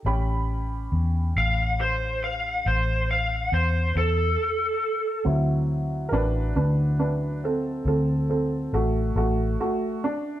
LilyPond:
<<
  \new Staff \with { instrumentName = "Lead electric guitar" } { \time 12/8 \key a \dorian \tempo 4. = 46 r4. f''8 c''8 f''8 c''8 f''8 c''8 a'4. | r1. | }
  \new Staff \with { instrumentName = "Upright piano" } { \time 12/8 \key a \dorian << { <cis' g' b''>1. | r4 <d' bes' b'>8 <d' b'>8 <d' b'>8 <c' a'>8 <c' a'>8 <c' a'>8 <a fis'>8 <a fis'>8 <a fis'>8 d'8 | } \\ { r1. | <fis c' e'>1. | } >> }
  \new Staff \with { instrumentName = "Fingered electric bass" } { \clef bass \time 12/8 \key a \dorian a,,4 e,8 a,,4. a,,4 e,8 e,8 r4 | d,4 a,,8 d,4. d,4 a,,8 a,,8 r4 | }
>>